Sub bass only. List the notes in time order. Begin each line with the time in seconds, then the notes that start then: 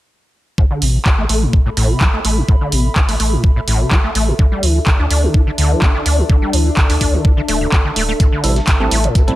0.82 A1
1.18 A1
1.29 A1
1.77 A1
2.25 A1
2.72 A1
3.09 A1
3.20 A1
3.67 A1
4.15 A1
4.63 D2
4.99 D2
5.11 D2
5.58 D2
6.06 D2
6.53 D2
6.90 D2
7.01 D2
7.48 D1
7.96 D1
8.44 A1
8.80 A1
8.91 A1